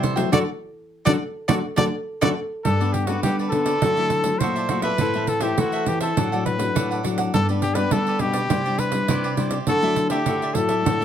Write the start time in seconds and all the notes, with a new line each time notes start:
Already playing: C3 E3 G3 C4 E4
0.03 A4 C5 E5 G5, pandeiro
0.16 F#3 A3 E4 C5 E5 G5, pandeiro
0.32 D3 F#3 A3 D4 F#4 A4 D5, pandeiro
1.05 D3 F#3 A3 D4 F#4 A4 D5, pandeiro
1.48 D3 F#3 A3 D4 F#4 A4 D5, pandeiro
1.76 D3 F#3 A3 D4 F#4 A4 D5, pandeiro
2.21 D3 F#3 A3 D4 F#4 A4 D5, pandeiro
2.64 G2 G3 G4 A4 B4 D5, pandeiro
2.80 B3 D4 A4 B4 D5, pandeiro
2.93 G4, muted cavaquinho stroke, pandeiro
3.06 B3 D4 F#4 A4 B4 D5, pandeiro
3.23 D3 G3 G4 A4 B4 D5, pandeiro
3.39 A4 B4 D5, pandeiro
3.50 D3 B3 D4 A4, pandeiro
3.66 A4 B4 D5, pandeiro
3.82 D3 F#3 A3 E4 F#4 A4 D5 E5, pandeiro
3.97 F#3 A3 E4 A4 D5 E5, pandeiro
4.10 muted cavaquinho stroke, pandeiro
4.24 F#3 A3 E4, pandeiro
4.39 A#2 F#4 A4 C5 D5, pandeiro
4.43 E5
4.55 A4 D5 E5, pandeiro
4.69 F#3 A3 E4 F#4 A4 D5 E5, pandeiro
4.82 A4 B4 D5 E5, pandeiro
4.98 A2 E3 C4 E4 A4 C5 E5, pandeiro
5.14 E3 C4 E4 A4 C5 E5, pandeiro
5.27 A4, muted cavaquinho stroke, pandeiro
5.40 E3 C4 E4 G4 A4 C5 E5, pandeiro
5.58 E3 A3 E4 F#4 A4 C5 E5, pandeiro
5.72 A4 C5 E5, pandeiro
5.86 E3 C4 E4 G4, pandeiro
6.00 A4 C5 E5, pandeiro
6.17 A2 F#3 A3 D4 A4 D5 F#5, pandeiro
6.32 F#3 A3 D4 A4 D5 F#5, pandeiro
6.46 B4, muted cavaquinho stroke, pandeiro
6.58 F#3 A3 D4, pandeiro
6.75 A2 D4 A4 D5 F#5, pandeiro
6.91 A4 D5 F#5, pandeiro
7.03 F#3 A3 D4 A4 D5 F#5, pandeiro
7.18 A4 D5 F#5, pandeiro
7.33 G2 G3 B3 D4 G4 A4 B4 D5, pandeiro
7.49 G3 B3 D4 G4 B4 D5, pandeiro
7.62 G4, muted cavaquinho stroke, pandeiro
7.75 G3 B3 D4 G4 B4 D5, pandeiro
7.91 D3 G3 D4 G4 A4 B4 D5, pandeiro
8.07 G4 B4 D5, pandeiro
8.19 B2 G3 B3 D4 G4, pandeiro
8.33 G4 B4 D5, pandeiro
8.50 C3 G3 D4 E4 G4 C5 D5, pandeiro
8.65 G3 D4 E4 G4 C5 D5, pandeiro
8.78 B4, muted cavaquinho stroke, pandeiro
8.92 G3 D4 E4, pandeiro
9.08 C3 G3 E4 G4 C5 D5, pandeiro
9.24 G4 C5 D5, pandeiro
9.37 G3 D4 E4 G4 C5 D5, pandeiro
9.51 G4 C5 D5, pandeiro
9.67 D3 F#3 A3 E4 F#4 A4 D5 E5, pandeiro
9.82 F#3 A3 E4 A4 D5 E5, pandeiro
9.96 muted cavaquinho stroke, pandeiro
10.10 A3 E4 G4 A4 D5 E5, pandeiro
10.26 A2 D3 F#4 A4 D5 E5, pandeiro
10.42 A4 D5 E5, pandeiro
10.55 A2 F#3 A3 E4 A4, pandeiro
10.69 A4 D5 E5, pandeiro
10.85 A2 D3 F#4 A4 D5 E5, pandeiro
11.00 F#3 A3 A4 D5 E5